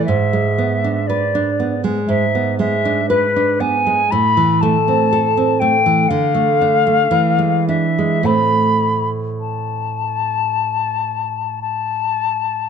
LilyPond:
<<
  \new Staff \with { instrumentName = "Flute" } { \time 4/4 \key a \minor \tempo 4 = 59 e''4 d''8 r8 e''8 e''8 b'8 gis''8 | b''8 a''4 g''8 f''4. e''8 | b''8 r8 a''2 a''4 | }
  \new Staff \with { instrumentName = "Nylon-string guitar" } { \time 4/4 \key a \minor gis,16 gis16 b16 d'16 b'16 d'16 b16 gis16 gis,16 b16 gis16 d'16 b'16 d'16 b16 gis16 | a,16 e16 a16 c'16 a'16 c'16 a16 e16 d16 a16 d'16 a16 e16 gis16 d'16 gis16 | <a, a c'>1 | }
>>